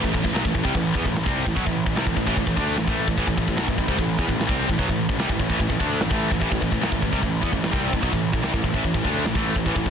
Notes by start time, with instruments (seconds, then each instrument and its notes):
0.04 picked electric bass A1, distorted electric guitar A2 E3, kick
0.13 picked electric bass A1, distorted electric guitar A2 E3, kick
0.24 picked electric bass A1, distorted electric guitar A2 E3, kick
0.33 picked electric bass B1, distorted electric guitar B2 F#3, snare, open hi-hat
0.44 picked electric bass A1, distorted electric guitar A2 E3, kick
0.55 picked electric bass A1, distorted electric guitar A2 E3, kick
0.64 picked electric bass C2, distorted electric guitar C3 G3, kick
0.75 picked electric bass A1, distorted electric guitar A2 E3, kick, open hi-hat
0.95 picked electric bass E2, distorted electric guitar E3 B3, kick
1.05 picked electric bass A1, distorted electric guitar A2 E3, kick
1.16 snare, open hi-hat
1.26 picked electric bass C2, distorted electric guitar C3 G3 C4, kick
1.46 picked electric bass A1, distorted electric guitar A2 E3, kick
1.56 picked electric bass B1, distorted electric guitar B2 F#3, kick, open hi-hat
1.65 picked electric bass A1, distorted electric guitar A2 E3, kick
1.86 picked electric bass A1, distorted electric guitar A2 E3, kick
1.96 picked electric bass C2, distorted electric guitar C3 G3, snare, open hi-hat
2.06 picked electric bass A1, distorted electric guitar A2 E3, kick
2.16 picked electric bass A1, distorted electric guitar A2 E3, kick
2.27 picked electric bass A1, distorted electric guitar A2 E3, kick
2.36 picked electric bass A1, distorted electric guitar A2 E3, kick, open hi-hat
2.47 picked electric bass A1, distorted electric guitar A2 E3, kick
2.56 picked electric bass D2, distorted electric guitar D3 A3 D4, kick
2.77 picked electric bass A1, distorted electric guitar A2 E3, snare, open hi-hat
2.87 picked electric bass A1, distorted electric guitar A2 E3 A3, kick
3.08 picked electric bass A1, distorted electric guitar A2 E3, kick
3.17 picked electric bass A1, distorted electric guitar A2 E3, kick, open hi-hat
3.28 picked electric bass A1, distorted electric guitar A2 E3, kick
3.38 picked electric bass A1, distorted electric guitar A2 E3, kick
3.48 picked electric bass A1, distorted electric guitar A2 E3, kick
3.57 picked electric bass B1, distorted electric guitar B2 F#3, snare, open hi-hat
3.68 picked electric bass A1, distorted electric guitar A2 E3, kick
3.78 picked electric bass A1, distorted electric guitar A2 E3, kick
3.88 picked electric bass C2, distorted electric guitar C3 G3, kick
3.99 picked electric bass A1, distorted electric guitar A2 E3, kick, open hi-hat
4.19 picked electric bass E2, distorted electric guitar E3 B3, kick
4.29 picked electric bass A1, distorted electric guitar A2 E3, kick
4.40 snare, open hi-hat
4.48 picked electric bass C2, distorted electric guitar C3 G3 C4, kick
4.69 picked electric bass A1, distorted electric guitar A2 E3, kick
4.79 picked electric bass B1, distorted electric guitar B2 F#3, kick, open hi-hat
4.89 picked electric bass A1, distorted electric guitar A2 E3, kick
5.09 picked electric bass A1, distorted electric guitar A2 E3, kick
5.19 picked electric bass C2, distorted electric guitar C3 G3, snare, open hi-hat
5.29 picked electric bass A1, distorted electric guitar A2 E3, kick
5.40 picked electric bass A1, distorted electric guitar A2 E3, kick
5.50 picked electric bass A1, distorted electric guitar A2 E3, kick
5.60 picked electric bass A1, distorted electric guitar A2 E3, kick, open hi-hat
5.70 picked electric bass A1, distorted electric guitar A2 E3, kick
5.80 picked electric bass D2, distorted electric guitar D3 A3 D4, kick
6.00 picked electric bass A1, distorted electric guitar A2 E3, snare, open hi-hat
6.10 picked electric bass A1, distorted electric guitar A2 E3 A3, kick
6.30 picked electric bass A1, distorted electric guitar A2 E3, kick
6.40 picked electric bass A1, distorted electric guitar A2 E3, kick, open hi-hat
6.51 picked electric bass A1, distorted electric guitar A2 E3, kick
6.61 picked electric bass A1, distorted electric guitar A2 E3, kick
6.72 picked electric bass A1, distorted electric guitar A2 E3, kick
6.81 picked electric bass B1, distorted electric guitar B2 F#3, snare, open hi-hat
6.91 picked electric bass A1, distorted electric guitar A2 E3, kick
7.02 picked electric bass A1, distorted electric guitar A2 E3, kick
7.13 picked electric bass C2, distorted electric guitar C3 G3, kick
7.23 picked electric bass A1, distorted electric guitar A2 E3, kick, open hi-hat
7.43 picked electric bass E2, distorted electric guitar E3 B3, kick
7.53 picked electric bass A1, distorted electric guitar A2 E3, kick
7.63 snare, open hi-hat
7.71 picked electric bass C2, distorted electric guitar C3 G3 C4, kick
7.93 picked electric bass A1, distorted electric guitar A2 E3, kick
8.03 picked electric bass B1, distorted electric guitar B2 F#3, kick, open hi-hat
8.13 picked electric bass A1, distorted electric guitar A2 E3, kick
8.33 picked electric bass A1, distorted electric guitar A2 E3, kick
8.43 picked electric bass C2, distorted electric guitar C3 G3, snare, open hi-hat
8.54 picked electric bass A1, distorted electric guitar A2 E3, kick
8.64 picked electric bass A1, distorted electric guitar A2 E3, kick
8.73 picked electric bass A1, distorted electric guitar A2 E3, kick
8.84 picked electric bass A1, distorted electric guitar A2 E3, kick, open hi-hat
8.94 picked electric bass A1, distorted electric guitar A2 E3, kick
9.04 picked electric bass D2, distorted electric guitar D3 A3 D4, kick
9.25 picked electric bass A1, distorted electric guitar A2 E3, snare, open hi-hat
9.35 picked electric bass A1, distorted electric guitar A2 E3 A3, kick
9.56 picked electric bass A1, distorted electric guitar A2 E3, kick
9.66 picked electric bass A1, distorted electric guitar A2 E3, kick, open hi-hat
9.76 picked electric bass A1, distorted electric guitar A2 E3, kick
9.86 picked electric bass A1, kick